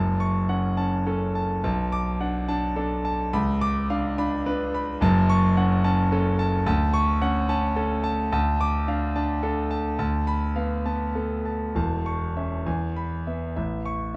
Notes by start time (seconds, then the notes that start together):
Already playing: F#1 F#2 A5
0.20 C#6
0.49 C#4 F#5
0.77 C#4 A5
1.06 C#4 A4
1.35 A5
1.64 B1 A5
1.92 D6
2.20 D4 F#5
2.48 D4 A5
2.76 D4 A4
3.05 A5
3.33 C#2 B5
3.61 D6
3.90 D4 F5
4.18 D4 B5
4.46 D4 B4
4.74 B5
5.01 F#1 F#2 A5
5.29 C#6
5.57 C#4 F#5
5.84 C#4 A5
6.12 C#4 A4
6.39 A5
6.66 D2 A5
6.94 C#6
7.21 C#4 F#5
7.49 C#4 A5
7.76 C#4 A4
8.04 A5
8.32 D2 A5
8.61 D6
8.88 D4 F5
9.16 D4 A5
9.43 D4 A4
9.71 A5
9.99 D2 A5
10.27 B5
10.56 B3 F5
10.85 B3 A5
11.15 B3 A4
11.45 A5
11.75 E1 E2 A5
12.06 C#6
12.37 C#4 E5
12.66 E2 G#5
12.96 B5
13.27 B3 E5
13.56 A1 E5
13.85 C#6